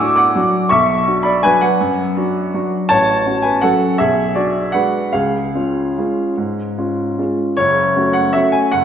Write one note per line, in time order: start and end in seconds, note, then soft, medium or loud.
0.00 0.38 A2 medium
0.00 0.33 D4 soft
0.00 0.33 F#4 soft
0.00 0.16 G#5 medium
0.00 0.16 D6 loud
0.00 0.17 E6 medium
0.16 0.67 F#5 medium
0.16 0.70 D6 medium
0.35 0.68 F#3 soft
0.35 0.68 D4 soft
0.35 0.68 F#4 soft
0.69 1.07 B1 medium
0.69 1.22 E5 medium
0.69 1.25 C#6 loud
1.07 1.41 D4 soft
1.07 1.41 F#4 soft
1.23 1.43 D5 medium
1.23 1.43 B5 medium
1.43 1.77 F#3 soft
1.43 1.77 D4 soft
1.43 1.78 F#4 soft
1.43 1.61 B4 medium
1.43 1.62 G#5 loud
1.61 2.69 B4 soft
1.61 2.72 F#5 medium
1.81 2.16 F#2 medium
2.17 2.51 D4 soft
2.17 2.51 F#4 soft
2.54 2.87 F#3 soft
2.54 2.87 D4 soft
2.54 2.88 F#4 soft
2.89 3.26 A1 medium
2.89 3.41 C#5 medium
2.89 3.44 A5 loud
3.26 3.60 C#4 soft
3.26 3.60 F#4 soft
3.42 3.62 B4 medium
3.42 3.62 G#5 medium
3.61 3.97 F#3 soft
3.61 3.97 C#4 soft
3.61 3.97 F#4 soft
3.61 3.97 A4 medium
3.61 3.99 F#5 medium
3.98 4.35 B1 medium
3.98 4.34 G#4 medium
3.98 4.35 E5 medium
4.35 4.71 D4 soft
4.35 4.72 F#4 soft
4.35 4.74 D5 medium
4.72 5.10 G#3 soft
4.72 5.10 D4 soft
4.72 5.11 F#4 soft
4.72 5.11 B4 medium
4.72 5.13 F#5 medium
5.13 5.54 C#2 soft
5.13 7.34 G#4 medium
5.13 7.38 F5 medium
5.55 5.94 C#4 soft
5.55 5.94 F4 soft
5.98 6.34 G#3 soft
5.98 6.34 C#4 soft
5.98 6.35 F4 soft
6.37 6.76 G#2 soft
6.78 7.15 C#4 soft
6.78 7.15 F4 soft
7.18 7.54 G#3 soft
7.18 7.54 C#4 soft
7.18 7.55 F4 soft
7.57 7.95 F#1 medium
7.57 8.15 C#5 medium
7.96 8.32 A3 soft
7.96 8.32 C#4 soft
7.96 8.32 F#4 soft
8.13 8.34 F#5 medium
8.33 8.69 A3 soft
8.33 8.69 C#4 soft
8.33 8.70 F#4 soft
8.33 8.53 E5 medium
8.52 8.72 G#5 medium
8.72 8.85 F#1 medium
8.72 8.85 F#5 medium